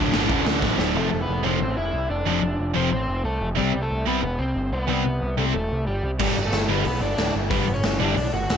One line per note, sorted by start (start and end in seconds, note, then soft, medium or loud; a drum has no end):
0.00 0.11 D1 medium
0.00 0.12 D2 medium
0.00 0.13 A2 loud
0.00 0.12 D3 loud
0.00 0.27 D4 medium
0.00 0.59 D5 medium
0.13 0.28 G1 medium
0.13 0.94 D2 medium
0.13 0.95 A2 medium
0.13 0.94 D3 loud
0.13 snare loud
0.27 0.44 D1 loud
0.27 0.94 D2 medium
0.27 0.95 A2 medium
0.27 0.58 C#4 medium
0.27 kick loud
0.27 ride medium
0.32 0.95 D3 medium
0.47 0.60 D2 medium
0.47 snare loud
0.62 0.77 A1 loud
0.62 kick loud
0.62 snare medium
0.79 0.96 D1 medium
0.79 snare loud
0.94 1.09 F1 medium
0.94 1.08 F2 medium
0.94 1.08 C3 loud
0.94 1.08 F3 loud
0.94 1.19 A3 medium
0.94 1.21 A4 medium
1.12 1.26 F1 medium
1.21 1.43 B3 medium
1.21 1.46 B4 medium
1.29 1.42 F1 medium
1.44 1.59 F1 medium
1.44 1.57 F2 medium
1.44 1.57 C3 medium
1.44 1.57 F3 loud
1.44 1.60 C4 medium
1.44 1.60 C5 medium
1.62 1.75 A1 medium
1.62 1.77 C4 medium
1.62 1.77 C5 medium
1.77 1.91 F1 medium
1.77 2.07 E4 medium
1.77 2.08 E5 loud
1.93 2.07 C2 medium
2.10 2.24 F1 medium
2.10 2.72 D4 medium
2.10 2.72 D5 medium
2.26 2.40 F1 loud
2.26 2.39 F2 loud
2.26 2.40 C3 medium
2.26 2.40 F3 loud
2.42 2.56 F1 medium
2.59 2.73 F1 medium
2.75 2.90 F1 medium
2.75 2.88 F2 medium
2.75 2.89 C3 loud
2.75 2.89 F3 medium
2.75 2.90 C4 medium
2.75 2.91 C5 medium
2.91 3.06 A1 medium
2.91 3.22 C4 medium
2.91 3.25 C5 medium
3.08 3.22 F1 medium
3.24 3.38 C2 medium
3.24 3.48 A3 medium
3.24 3.48 A4 medium
3.41 3.60 F1 medium
3.56 3.72 C2 loud
3.56 3.70 C3 loud
3.56 3.80 G3 medium
3.56 3.71 G3 medium
3.56 3.71 C4 loud
3.56 3.83 G4 medium
3.74 3.88 C2 medium
3.82 4.05 A3 medium
3.82 4.05 A4 medium
3.91 4.05 C2 medium
4.07 4.21 C2 medium
4.07 4.20 C3 loud
4.07 4.20 G3 loud
4.07 4.21 B3 medium
4.07 4.21 C4 loud
4.07 4.21 B4 medium
4.22 4.37 E1 loud
4.22 4.38 B3 medium
4.22 4.40 B4 medium
4.39 4.54 C2 medium
4.39 4.70 C4 medium
4.39 4.73 C5 loud
4.55 4.70 G1 medium
4.72 4.86 C2 medium
4.72 5.34 B3 medium
4.72 5.34 B4 medium
4.88 5.03 C2 loud
4.88 5.02 C3 medium
4.88 5.02 G3 loud
4.88 5.02 C4 loud
5.05 5.19 C2 medium
5.22 5.36 C2 medium
5.37 5.52 C2 medium
5.37 5.51 C3 medium
5.37 5.51 G3 loud
5.37 5.44 A3 medium
5.37 5.51 C4 loud
5.37 5.43 A4 medium
5.53 5.69 E1 medium
5.53 5.85 A3 medium
5.53 5.87 A4 medium
5.72 5.85 C2 medium
5.87 6.01 G1 medium
5.87 6.10 G3 medium
5.87 6.10 G4 medium
6.03 6.18 C2 medium
6.19 6.34 G1 medium
6.19 6.33 G2 medium
6.19 6.34 D3 medium
6.19 6.43 G3 medium
6.19 6.34 G3 loud
6.19 6.45 G4 medium
6.19 kick loud
6.19 crash medium
6.37 6.51 G1 medium
6.45 6.68 A3 medium
6.45 6.68 A4 medium
6.52 6.67 G1 medium
6.52 snare loud
6.52 open hi-hat medium
6.68 6.83 G1 medium
6.68 6.82 G2 medium
6.68 6.83 D3 medium
6.68 6.83 G3 loud
6.68 6.85 B3 medium
6.68 6.85 B4 medium
6.85 7.00 B1 medium
6.85 7.02 B3 medium
6.85 7.01 B4 loud
6.85 open hi-hat medium
7.01 7.15 G1 medium
7.01 7.33 D4 medium
7.01 7.33 D5 loud
7.17 7.32 D1 medium
7.17 snare loud
7.17 open hi-hat medium
7.35 7.49 G1 medium
7.50 7.65 G1 medium
7.50 7.64 G2 loud
7.50 7.64 D3 loud
7.50 7.64 G3 loud
7.50 7.74 B3 medium
7.50 7.74 B4 loud
7.50 kick loud
7.50 open hi-hat medium
7.68 7.82 G1 medium
7.74 7.98 C#4 medium
7.74 8.00 C#5 loud
7.83 7.98 G1 medium
7.83 snare loud
7.83 open hi-hat medium
8.00 8.15 G1 medium
8.00 8.14 G2 loud
8.00 8.14 D3 loud
8.00 8.14 G3 loud
8.00 8.16 D4 medium
8.00 8.15 D5 medium
8.16 8.31 B1 medium
8.16 8.33 D4 medium
8.16 8.34 D5 loud
8.16 open hi-hat medium
8.33 8.47 G1 medium
8.33 8.57 F#4 medium
8.33 8.57 F#5 loud
8.50 8.57 D1 medium
8.50 snare loud
8.50 open hi-hat medium